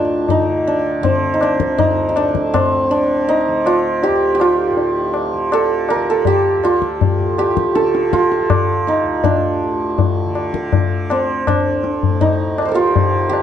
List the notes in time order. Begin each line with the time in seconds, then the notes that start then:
Already playing: D2 A2 D3 D4 F4
0.29 D#4, tabla tin, tabla ge
0.38 D3
0.67 D4
1.00 D3 C4, tabla tin, tabla ge
1.34 D#4
1.41 D4, tabla na
1.60 D2, tabla ke
1.78 D#4, tabla tin, tabla ge
2.09 D#4
2.16 D4, tabla na
2.23 A2
2.35 tabla ke
2.54 C4, tabla na, tabla ge
2.86 D3
2.91 D4
3.28 D#4, tabla tin
3.48 D3
3.66 F4, tabla na
4.03 G4, tabla tin
4.08 D2
4.35 G4
4.40 F4, tabla na
4.71 A2
4.77 tabla tin
5.14 tabla na
5.33 D3
5.52 A4, tabla na
5.89 A#4, tabla na
5.95 D3
6.10 A4
6.25 G4, tabla tin, tabla ge
6.57 D2
6.64 F4, tabla na
6.82 tabla ke
7.01 tabla tin, tabla ge
7.18 A2
7.38 G4, tabla na
7.57 tabla ke
7.75 D3 A4, tabla te
7.95 tabla te
8.13 F4, tabla ke
8.32 tabla te
8.40 D3
8.50 tabla na, tabla ge
8.87 D#4, tabla te
9.03 D2
9.24 D4, tabla tin, tabla ge
9.63 A2
9.98 tabla tin, tabla ge
10.26 D3
10.35 tabla na
10.54 tabla ke
10.73 tabla tin, tabla ge
10.87 D3
11.10 C4, tabla na
11.47 D2 D4, tabla na, tabla ge
11.84 tabla te
12.03 tabla ge
12.09 A2
12.21 D#4, tabla tin, tabla ge
12.58 D5 D#5, tabla na
12.65 A#4 C5
12.70 D3 A4
12.74 F4 G4
12.96 tabla tin, tabla ge
13.29 D3 G4, tabla na